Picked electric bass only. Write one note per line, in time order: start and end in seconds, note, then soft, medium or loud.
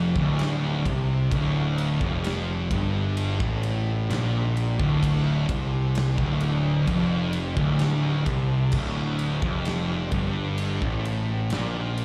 0.00 0.12 F1 medium
0.16 0.82 D1 medium
0.86 1.29 C2 medium
1.31 1.97 D1 medium
2.01 2.67 F1 loud
2.71 3.37 G1 medium
3.40 4.06 A1 medium
4.10 4.76 A#1 medium
4.79 5.45 D1 loud
5.49 6.15 C2 loud
6.18 6.84 D1 medium
6.88 7.54 F1 loud
7.57 8.23 D1 medium
8.26 8.70 C2 medium
8.73 9.39 D1 medium
9.43 10.09 F1 medium
10.12 10.78 G1 medium
10.82 11.48 A1 medium
11.52 12.05 A#1 medium